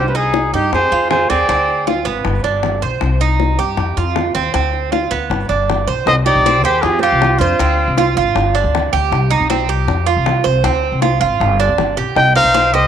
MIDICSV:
0, 0, Header, 1, 6, 480
1, 0, Start_track
1, 0, Key_signature, -3, "minor"
1, 0, Tempo, 381194
1, 1877, Time_signature, 4, 2, 24, 8
1, 16211, End_track
2, 0, Start_track
2, 0, Title_t, "Trumpet"
2, 0, Program_c, 0, 56
2, 100, Note_on_c, 0, 71, 63
2, 206, Note_on_c, 0, 68, 88
2, 225, Note_off_c, 0, 71, 0
2, 666, Note_off_c, 0, 68, 0
2, 673, Note_on_c, 0, 67, 86
2, 897, Note_off_c, 0, 67, 0
2, 918, Note_on_c, 0, 72, 97
2, 1364, Note_off_c, 0, 72, 0
2, 1393, Note_on_c, 0, 72, 96
2, 1630, Note_on_c, 0, 74, 102
2, 1648, Note_off_c, 0, 72, 0
2, 2355, Note_off_c, 0, 74, 0
2, 7642, Note_on_c, 0, 75, 108
2, 7751, Note_off_c, 0, 75, 0
2, 7882, Note_on_c, 0, 74, 109
2, 8329, Note_off_c, 0, 74, 0
2, 8359, Note_on_c, 0, 72, 96
2, 8589, Note_on_c, 0, 68, 99
2, 8608, Note_off_c, 0, 72, 0
2, 8823, Note_off_c, 0, 68, 0
2, 8831, Note_on_c, 0, 67, 99
2, 9304, Note_on_c, 0, 65, 87
2, 9323, Note_off_c, 0, 67, 0
2, 10272, Note_off_c, 0, 65, 0
2, 15317, Note_on_c, 0, 79, 110
2, 15537, Note_off_c, 0, 79, 0
2, 15561, Note_on_c, 0, 77, 112
2, 16041, Note_on_c, 0, 75, 99
2, 16060, Note_off_c, 0, 77, 0
2, 16211, Note_off_c, 0, 75, 0
2, 16211, End_track
3, 0, Start_track
3, 0, Title_t, "Nylon-string guitar"
3, 0, Program_c, 1, 24
3, 100, Note_on_c, 1, 67, 58
3, 195, Note_off_c, 1, 67, 0
3, 195, Note_on_c, 1, 63, 75
3, 675, Note_off_c, 1, 63, 0
3, 689, Note_on_c, 1, 63, 73
3, 906, Note_off_c, 1, 63, 0
3, 942, Note_on_c, 1, 68, 83
3, 1377, Note_off_c, 1, 68, 0
3, 1393, Note_on_c, 1, 68, 91
3, 1618, Note_off_c, 1, 68, 0
3, 1638, Note_on_c, 1, 68, 81
3, 2359, Note_off_c, 1, 68, 0
3, 7652, Note_on_c, 1, 72, 91
3, 7716, Note_off_c, 1, 72, 0
3, 7880, Note_on_c, 1, 67, 85
3, 8328, Note_off_c, 1, 67, 0
3, 8355, Note_on_c, 1, 68, 77
3, 8589, Note_off_c, 1, 68, 0
3, 8589, Note_on_c, 1, 65, 79
3, 8802, Note_on_c, 1, 60, 80
3, 8836, Note_off_c, 1, 65, 0
3, 9297, Note_off_c, 1, 60, 0
3, 9297, Note_on_c, 1, 62, 64
3, 10268, Note_off_c, 1, 62, 0
3, 15317, Note_on_c, 1, 75, 88
3, 15537, Note_off_c, 1, 75, 0
3, 15566, Note_on_c, 1, 72, 86
3, 16005, Note_off_c, 1, 72, 0
3, 16052, Note_on_c, 1, 72, 78
3, 16211, Note_off_c, 1, 72, 0
3, 16211, End_track
4, 0, Start_track
4, 0, Title_t, "Cuban tres"
4, 0, Program_c, 2, 25
4, 0, Note_on_c, 2, 72, 71
4, 176, Note_off_c, 2, 72, 0
4, 187, Note_on_c, 2, 63, 76
4, 656, Note_off_c, 2, 63, 0
4, 675, Note_on_c, 2, 67, 71
4, 1141, Note_off_c, 2, 67, 0
4, 1158, Note_on_c, 2, 65, 69
4, 1623, Note_off_c, 2, 65, 0
4, 1635, Note_on_c, 2, 60, 80
4, 1859, Note_off_c, 2, 60, 0
4, 1874, Note_on_c, 2, 60, 74
4, 2342, Note_off_c, 2, 60, 0
4, 2356, Note_on_c, 2, 65, 63
4, 2583, Note_on_c, 2, 59, 83
4, 2591, Note_off_c, 2, 65, 0
4, 3057, Note_off_c, 2, 59, 0
4, 3072, Note_on_c, 2, 62, 68
4, 3543, Note_off_c, 2, 62, 0
4, 3553, Note_on_c, 2, 72, 68
4, 4024, Note_off_c, 2, 72, 0
4, 4040, Note_on_c, 2, 63, 76
4, 4508, Note_off_c, 2, 63, 0
4, 4517, Note_on_c, 2, 67, 72
4, 4986, Note_off_c, 2, 67, 0
4, 5000, Note_on_c, 2, 65, 69
4, 5468, Note_off_c, 2, 65, 0
4, 5473, Note_on_c, 2, 60, 82
4, 5700, Note_off_c, 2, 60, 0
4, 5715, Note_on_c, 2, 60, 73
4, 6185, Note_off_c, 2, 60, 0
4, 6196, Note_on_c, 2, 65, 64
4, 6432, Note_on_c, 2, 59, 87
4, 6434, Note_off_c, 2, 65, 0
4, 6904, Note_off_c, 2, 59, 0
4, 6913, Note_on_c, 2, 62, 66
4, 7385, Note_off_c, 2, 62, 0
4, 7398, Note_on_c, 2, 72, 73
4, 7634, Note_off_c, 2, 72, 0
4, 7881, Note_on_c, 2, 63, 86
4, 8116, Note_off_c, 2, 63, 0
4, 8136, Note_on_c, 2, 60, 82
4, 8363, Note_off_c, 2, 60, 0
4, 8370, Note_on_c, 2, 67, 80
4, 8832, Note_off_c, 2, 67, 0
4, 8851, Note_on_c, 2, 65, 81
4, 9312, Note_off_c, 2, 65, 0
4, 9331, Note_on_c, 2, 72, 80
4, 9560, Note_off_c, 2, 72, 0
4, 9570, Note_on_c, 2, 60, 77
4, 10031, Note_off_c, 2, 60, 0
4, 10048, Note_on_c, 2, 65, 75
4, 10271, Note_off_c, 2, 65, 0
4, 10286, Note_on_c, 2, 65, 77
4, 10748, Note_off_c, 2, 65, 0
4, 10762, Note_on_c, 2, 62, 74
4, 11226, Note_off_c, 2, 62, 0
4, 11242, Note_on_c, 2, 67, 78
4, 11705, Note_off_c, 2, 67, 0
4, 11716, Note_on_c, 2, 63, 83
4, 11950, Note_off_c, 2, 63, 0
4, 11959, Note_on_c, 2, 60, 79
4, 12191, Note_off_c, 2, 60, 0
4, 12201, Note_on_c, 2, 67, 77
4, 12664, Note_off_c, 2, 67, 0
4, 12673, Note_on_c, 2, 65, 78
4, 13140, Note_off_c, 2, 65, 0
4, 13147, Note_on_c, 2, 72, 79
4, 13384, Note_off_c, 2, 72, 0
4, 13397, Note_on_c, 2, 60, 77
4, 13861, Note_off_c, 2, 60, 0
4, 13877, Note_on_c, 2, 65, 70
4, 14096, Note_off_c, 2, 65, 0
4, 14111, Note_on_c, 2, 65, 79
4, 14577, Note_off_c, 2, 65, 0
4, 14602, Note_on_c, 2, 62, 79
4, 15062, Note_off_c, 2, 62, 0
4, 15074, Note_on_c, 2, 67, 75
4, 15538, Note_off_c, 2, 67, 0
4, 15557, Note_on_c, 2, 63, 82
4, 15787, Note_off_c, 2, 63, 0
4, 15795, Note_on_c, 2, 60, 83
4, 16025, Note_off_c, 2, 60, 0
4, 16037, Note_on_c, 2, 67, 77
4, 16211, Note_off_c, 2, 67, 0
4, 16211, End_track
5, 0, Start_track
5, 0, Title_t, "Upright bass"
5, 0, Program_c, 3, 32
5, 0, Note_on_c, 3, 36, 91
5, 637, Note_off_c, 3, 36, 0
5, 670, Note_on_c, 3, 43, 78
5, 901, Note_off_c, 3, 43, 0
5, 911, Note_on_c, 3, 41, 99
5, 1141, Note_off_c, 3, 41, 0
5, 1152, Note_on_c, 3, 41, 83
5, 1611, Note_off_c, 3, 41, 0
5, 1638, Note_on_c, 3, 39, 80
5, 1866, Note_off_c, 3, 39, 0
5, 1872, Note_on_c, 3, 38, 89
5, 2560, Note_off_c, 3, 38, 0
5, 2588, Note_on_c, 3, 32, 85
5, 2822, Note_off_c, 3, 32, 0
5, 2831, Note_on_c, 3, 31, 102
5, 3064, Note_off_c, 3, 31, 0
5, 3074, Note_on_c, 3, 31, 84
5, 3534, Note_off_c, 3, 31, 0
5, 3559, Note_on_c, 3, 35, 80
5, 3789, Note_off_c, 3, 35, 0
5, 3796, Note_on_c, 3, 36, 95
5, 4484, Note_off_c, 3, 36, 0
5, 4519, Note_on_c, 3, 43, 86
5, 4741, Note_off_c, 3, 43, 0
5, 4748, Note_on_c, 3, 41, 104
5, 4984, Note_off_c, 3, 41, 0
5, 4995, Note_on_c, 3, 41, 85
5, 5456, Note_off_c, 3, 41, 0
5, 5477, Note_on_c, 3, 39, 84
5, 5709, Note_off_c, 3, 39, 0
5, 5718, Note_on_c, 3, 38, 92
5, 6405, Note_off_c, 3, 38, 0
5, 6436, Note_on_c, 3, 38, 82
5, 6665, Note_off_c, 3, 38, 0
5, 6672, Note_on_c, 3, 31, 102
5, 6906, Note_off_c, 3, 31, 0
5, 6917, Note_on_c, 3, 31, 87
5, 7377, Note_off_c, 3, 31, 0
5, 7396, Note_on_c, 3, 35, 80
5, 7624, Note_off_c, 3, 35, 0
5, 7631, Note_on_c, 3, 36, 96
5, 7979, Note_off_c, 3, 36, 0
5, 7997, Note_on_c, 3, 35, 88
5, 8356, Note_off_c, 3, 35, 0
5, 8356, Note_on_c, 3, 39, 89
5, 8588, Note_off_c, 3, 39, 0
5, 8600, Note_on_c, 3, 41, 108
5, 8943, Note_off_c, 3, 41, 0
5, 8969, Note_on_c, 3, 36, 88
5, 9308, Note_off_c, 3, 36, 0
5, 9318, Note_on_c, 3, 41, 94
5, 9548, Note_off_c, 3, 41, 0
5, 9563, Note_on_c, 3, 38, 97
5, 9904, Note_off_c, 3, 38, 0
5, 9918, Note_on_c, 3, 36, 90
5, 10276, Note_on_c, 3, 32, 87
5, 10295, Note_off_c, 3, 36, 0
5, 10506, Note_off_c, 3, 32, 0
5, 10516, Note_on_c, 3, 31, 105
5, 10860, Note_off_c, 3, 31, 0
5, 10876, Note_on_c, 3, 38, 90
5, 11219, Note_off_c, 3, 38, 0
5, 11241, Note_on_c, 3, 38, 98
5, 11468, Note_off_c, 3, 38, 0
5, 11481, Note_on_c, 3, 36, 97
5, 11821, Note_off_c, 3, 36, 0
5, 11839, Note_on_c, 3, 35, 89
5, 12198, Note_off_c, 3, 35, 0
5, 12198, Note_on_c, 3, 36, 86
5, 12425, Note_off_c, 3, 36, 0
5, 12434, Note_on_c, 3, 41, 104
5, 12777, Note_off_c, 3, 41, 0
5, 12799, Note_on_c, 3, 36, 85
5, 13139, Note_off_c, 3, 36, 0
5, 13165, Note_on_c, 3, 36, 96
5, 13388, Note_off_c, 3, 36, 0
5, 13393, Note_on_c, 3, 38, 97
5, 13735, Note_off_c, 3, 38, 0
5, 13751, Note_on_c, 3, 36, 93
5, 14109, Note_on_c, 3, 32, 94
5, 14127, Note_off_c, 3, 36, 0
5, 14339, Note_off_c, 3, 32, 0
5, 14356, Note_on_c, 3, 31, 104
5, 14696, Note_off_c, 3, 31, 0
5, 14716, Note_on_c, 3, 38, 85
5, 14828, Note_off_c, 3, 38, 0
5, 14837, Note_on_c, 3, 31, 92
5, 15050, Note_off_c, 3, 31, 0
5, 15074, Note_on_c, 3, 35, 84
5, 15289, Note_off_c, 3, 35, 0
5, 15313, Note_on_c, 3, 36, 97
5, 15654, Note_off_c, 3, 36, 0
5, 15666, Note_on_c, 3, 35, 86
5, 16023, Note_off_c, 3, 35, 0
5, 16023, Note_on_c, 3, 36, 88
5, 16211, Note_off_c, 3, 36, 0
5, 16211, End_track
6, 0, Start_track
6, 0, Title_t, "Drums"
6, 188, Note_on_c, 9, 60, 35
6, 314, Note_off_c, 9, 60, 0
6, 425, Note_on_c, 9, 60, 61
6, 551, Note_off_c, 9, 60, 0
6, 678, Note_on_c, 9, 60, 35
6, 804, Note_off_c, 9, 60, 0
6, 917, Note_on_c, 9, 60, 69
6, 1043, Note_off_c, 9, 60, 0
6, 1153, Note_on_c, 9, 60, 35
6, 1279, Note_off_c, 9, 60, 0
6, 1394, Note_on_c, 9, 60, 72
6, 1394, Note_on_c, 9, 61, 82
6, 1520, Note_off_c, 9, 60, 0
6, 1520, Note_off_c, 9, 61, 0
6, 1876, Note_on_c, 9, 60, 68
6, 2002, Note_off_c, 9, 60, 0
6, 2120, Note_on_c, 9, 60, 34
6, 2246, Note_off_c, 9, 60, 0
6, 2364, Note_on_c, 9, 60, 61
6, 2490, Note_off_c, 9, 60, 0
6, 2830, Note_on_c, 9, 60, 72
6, 2955, Note_off_c, 9, 60, 0
6, 3077, Note_on_c, 9, 60, 35
6, 3203, Note_off_c, 9, 60, 0
6, 3313, Note_on_c, 9, 60, 67
6, 3313, Note_on_c, 9, 61, 79
6, 3439, Note_off_c, 9, 60, 0
6, 3439, Note_off_c, 9, 61, 0
6, 3552, Note_on_c, 9, 60, 36
6, 3678, Note_off_c, 9, 60, 0
6, 3790, Note_on_c, 9, 60, 68
6, 3915, Note_off_c, 9, 60, 0
6, 4030, Note_on_c, 9, 60, 34
6, 4156, Note_off_c, 9, 60, 0
6, 4277, Note_on_c, 9, 60, 59
6, 4403, Note_off_c, 9, 60, 0
6, 4522, Note_on_c, 9, 60, 33
6, 4648, Note_off_c, 9, 60, 0
6, 4753, Note_on_c, 9, 60, 69
6, 4879, Note_off_c, 9, 60, 0
6, 5003, Note_on_c, 9, 60, 34
6, 5129, Note_off_c, 9, 60, 0
6, 5236, Note_on_c, 9, 60, 66
6, 5236, Note_on_c, 9, 61, 87
6, 5362, Note_off_c, 9, 60, 0
6, 5362, Note_off_c, 9, 61, 0
6, 5718, Note_on_c, 9, 60, 70
6, 5844, Note_off_c, 9, 60, 0
6, 5961, Note_on_c, 9, 60, 36
6, 6087, Note_off_c, 9, 60, 0
6, 6205, Note_on_c, 9, 60, 60
6, 6331, Note_off_c, 9, 60, 0
6, 6687, Note_on_c, 9, 60, 69
6, 6813, Note_off_c, 9, 60, 0
6, 6931, Note_on_c, 9, 60, 36
6, 7057, Note_off_c, 9, 60, 0
6, 7172, Note_on_c, 9, 60, 69
6, 7172, Note_on_c, 9, 61, 81
6, 7298, Note_off_c, 9, 60, 0
6, 7298, Note_off_c, 9, 61, 0
6, 7409, Note_on_c, 9, 60, 37
6, 7534, Note_off_c, 9, 60, 0
6, 7643, Note_on_c, 9, 60, 74
6, 7769, Note_off_c, 9, 60, 0
6, 8134, Note_on_c, 9, 60, 63
6, 8260, Note_off_c, 9, 60, 0
6, 8601, Note_on_c, 9, 60, 74
6, 8727, Note_off_c, 9, 60, 0
6, 9088, Note_on_c, 9, 60, 73
6, 9088, Note_on_c, 9, 61, 83
6, 9214, Note_off_c, 9, 60, 0
6, 9214, Note_off_c, 9, 61, 0
6, 9563, Note_on_c, 9, 60, 70
6, 9689, Note_off_c, 9, 60, 0
6, 10042, Note_on_c, 9, 60, 64
6, 10168, Note_off_c, 9, 60, 0
6, 10295, Note_on_c, 9, 60, 35
6, 10421, Note_off_c, 9, 60, 0
6, 10524, Note_on_c, 9, 60, 76
6, 10650, Note_off_c, 9, 60, 0
6, 10771, Note_on_c, 9, 60, 36
6, 10896, Note_off_c, 9, 60, 0
6, 11015, Note_on_c, 9, 60, 75
6, 11015, Note_on_c, 9, 61, 83
6, 11141, Note_off_c, 9, 60, 0
6, 11141, Note_off_c, 9, 61, 0
6, 11250, Note_on_c, 9, 60, 37
6, 11376, Note_off_c, 9, 60, 0
6, 11490, Note_on_c, 9, 60, 75
6, 11616, Note_off_c, 9, 60, 0
6, 11967, Note_on_c, 9, 60, 61
6, 12092, Note_off_c, 9, 60, 0
6, 12446, Note_on_c, 9, 60, 72
6, 12572, Note_off_c, 9, 60, 0
6, 12922, Note_on_c, 9, 60, 73
6, 12922, Note_on_c, 9, 61, 88
6, 13048, Note_off_c, 9, 60, 0
6, 13048, Note_off_c, 9, 61, 0
6, 13399, Note_on_c, 9, 60, 73
6, 13525, Note_off_c, 9, 60, 0
6, 13877, Note_on_c, 9, 60, 65
6, 14003, Note_off_c, 9, 60, 0
6, 14126, Note_on_c, 9, 60, 37
6, 14252, Note_off_c, 9, 60, 0
6, 14371, Note_on_c, 9, 60, 69
6, 14497, Note_off_c, 9, 60, 0
6, 14608, Note_on_c, 9, 60, 37
6, 14734, Note_off_c, 9, 60, 0
6, 14837, Note_on_c, 9, 60, 72
6, 14837, Note_on_c, 9, 61, 85
6, 14963, Note_off_c, 9, 60, 0
6, 14963, Note_off_c, 9, 61, 0
6, 15080, Note_on_c, 9, 60, 39
6, 15206, Note_off_c, 9, 60, 0
6, 15318, Note_on_c, 9, 60, 74
6, 15444, Note_off_c, 9, 60, 0
6, 15797, Note_on_c, 9, 60, 65
6, 15923, Note_off_c, 9, 60, 0
6, 16211, End_track
0, 0, End_of_file